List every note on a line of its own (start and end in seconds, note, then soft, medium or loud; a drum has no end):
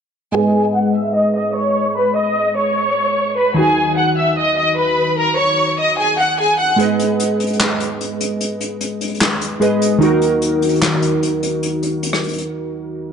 0.32 3.52 G#3 medium
0.32 3.53 G#4 medium
0.32 0.73 G#4 medium
0.32 0.73 G#5 loud
0.36 3.54 B4 medium
0.36 3.55 D#5 medium
0.75 0.91 F#5 medium
0.75 0.91 F#6 medium
0.95 1.11 E5 medium
0.95 1.11 E6 medium
1.15 1.31 D#5 medium
1.15 1.32 D#6 medium
1.36 1.51 D#5 medium
1.36 1.52 D#6 medium
1.56 1.94 C#5 medium
1.56 1.95 C#6 medium
1.97 2.12 B4 medium
1.97 2.13 B5 medium
2.16 2.54 D#5 medium
2.16 2.55 D#6 medium
2.57 3.33 C#5 medium
2.57 3.34 C#6 medium
3.37 3.53 B4 medium
3.37 3.53 B5 medium
3.54 6.74 D#3 medium
3.54 6.75 D#4 medium
3.54 3.95 G#5 loud
3.58 6.76 F#4 medium
3.58 3.96 G#4 medium
3.98 4.13 F#5 medium
3.98 4.14 F#6 medium
4.18 4.34 E5 medium
4.18 4.34 E6 medium
4.38 4.54 D#5 medium
4.38 4.54 D#6 medium
4.58 4.73 D#5 medium
4.58 4.74 D#6 medium
4.78 5.16 B4 medium
4.78 5.16 B5 medium
5.19 5.34 A#4 medium
5.19 5.35 A#5 medium
5.38 5.76 C#5 medium
5.38 5.76 C#6 medium
5.79 5.95 D#5 medium
5.79 5.95 D#6 medium
5.98 6.15 G#4 medium
5.98 6.14 G#5 medium
6.19 6.35 F#5 medium
6.19 6.35 F#6 medium
6.40 6.56 G#4 medium
6.40 6.55 G#5 medium
6.59 6.75 F#5 medium
6.59 6.75 F#6 medium
6.76 9.56 G#3 medium
6.76 9.57 G#4 medium
6.76 closed hi-hat medium
6.81 9.58 B4 medium
6.81 9.59 D#5 medium
6.99 closed hi-hat medium
7.20 closed hi-hat medium
7.40 closed hi-hat medium
7.47 closed hi-hat medium
7.53 closed hi-hat soft
7.60 snare loud
7.60 clap medium
7.80 closed hi-hat medium
8.01 closed hi-hat medium
8.21 closed hi-hat medium
8.41 closed hi-hat medium
8.61 closed hi-hat medium
8.81 closed hi-hat medium
9.01 closed hi-hat medium
9.08 closed hi-hat medium
9.14 closed hi-hat soft
9.21 snare loud
9.21 clap medium
9.41 closed hi-hat medium
9.60 10.01 G#3 medium
9.60 10.01 G#4 medium
9.60 10.02 B4 medium
9.60 10.02 D#5 medium
9.60 closed hi-hat medium
9.82 closed hi-hat medium
9.99 13.13 D#3 medium
9.99 13.13 D#4 medium
9.99 closed hi-hat medium
10.03 13.13 F#4 medium
10.03 13.13 A#4 medium
10.22 closed hi-hat medium
10.42 closed hi-hat medium
10.62 closed hi-hat medium
10.69 closed hi-hat medium
10.76 closed hi-hat soft
10.82 snare loud
10.82 clap medium
11.02 closed hi-hat medium
11.23 closed hi-hat medium
11.43 closed hi-hat medium
11.63 closed hi-hat medium
11.83 closed hi-hat medium
12.03 closed hi-hat medium
12.13 cross-stick medium
12.23 closed hi-hat medium
12.28 closed hi-hat medium
12.33 closed hi-hat medium
12.38 closed hi-hat medium